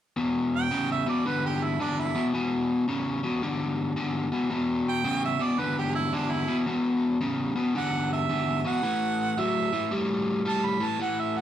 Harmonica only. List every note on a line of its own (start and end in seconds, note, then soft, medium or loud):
0.56 0.90 G5 medium
0.92 1.08 E5 medium
1.09 1.28 D5 medium
1.27 1.44 B4 medium
1.46 1.65 G4 medium
1.64 1.80 E4 medium
1.81 2.01 D4 medium
1.99 2.28 E4 medium
4.89 5.23 G5 loud
5.25 5.44 E5 medium
5.42 5.61 D5 medium
5.60 5.77 B4 medium
5.79 5.95 G4 medium
5.95 6.16 E4 medium
6.14 6.33 D4 medium
6.32 6.60 E4 medium
7.77 8.10 F#5 medium
8.13 8.64 E5 medium
8.67 9.41 F#5 medium
9.40 9.91 E5 loud
10.48 10.67 A5 medium
10.66 10.85 B5 medium
10.84 11.00 A5 medium
11.02 11.22 F#5 medium
11.20 11.39 E5 medium
11.38 11.41 F#5 medium